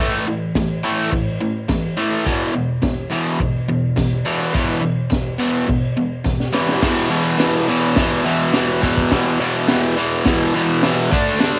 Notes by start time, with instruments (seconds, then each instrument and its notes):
0.00 overdriven electric guitar A2 E3 A3
0.27 overdriven electric guitar A2 E3
0.55 overdriven electric guitar A2 E3, kick, snare, tambourine, crash
0.83 overdriven electric guitar A2 E3 A3
1.12 overdriven electric guitar A2 E3, kick, crash
1.41 overdriven electric guitar A2 E3
1.69 overdriven electric guitar A2 E3, kick, snare, tambourine, crash
1.97 overdriven electric guitar A2 E3 A3
2.25 overdriven electric guitar E2 B2 E3, kick, crash
2.54 overdriven electric guitar E2 B2
2.82 overdriven electric guitar E2 B2, kick, snare, tambourine, crash
3.11 overdriven electric guitar E2 B2 E3
3.40 overdriven electric guitar E2 B2, kick, crash
3.68 overdriven electric guitar E2 B2
3.96 overdriven electric guitar E2 B2, kick, snare, tambourine, crash
4.25 overdriven electric guitar E2 B2 E3
4.53 overdriven electric guitar E2 B2 E3, kick, crash
4.81 overdriven electric guitar E2 B2
5.10 overdriven electric guitar E2 B2, kick, snare, tambourine, crash
5.38 overdriven electric guitar E2 B2 E3
5.67 overdriven electric guitar E2 B2, kick, crash
5.97 overdriven electric guitar E2 B2
6.24 overdriven electric guitar E2 B2, kick, snare, tambourine
6.40 snare
6.52 overdriven electric guitar E2 B2 E3, snare
6.69 snare
6.81 overdriven electric guitar E2 B2 E3, kick, snare, crash, tambourine
7.09 overdriven electric guitar E2 B2 E3, tambourine
7.38 overdriven electric guitar E2 B2 E3, snare, tambourine, crash
7.67 overdriven electric guitar E2 B2 E3, tambourine
7.96 overdriven electric guitar E2 B2 E3, kick, snare, tambourine, crash
8.24 overdriven electric guitar E2 B2 E3, tambourine
8.52 overdriven electric guitar E2 B2 E3, snare, tambourine, crash
8.81 overdriven electric guitar E2 B2 E3, kick, tambourine
8.98 kick
9.11 overdriven electric guitar E2 B2 E3, kick, snare, tambourine, crash
9.40 overdriven electric guitar E2 B2 E3, tambourine
9.68 overdriven electric guitar E2 B2 E3, snare, tambourine, crash
9.97 overdriven electric guitar E2 B2 E3, tambourine
10.25 overdriven electric guitar E2 B2 E3, kick, snare, tambourine, crash
10.54 overdriven electric guitar E2 B2 E3, tambourine
10.83 overdriven electric guitar E2 B2 E3, snare, tambourine, crash
11.11 overdriven electric guitar D3 A3 D4, kick, tambourine
11.40 overdriven electric guitar D3 A3 D4, snare, tambourine, crash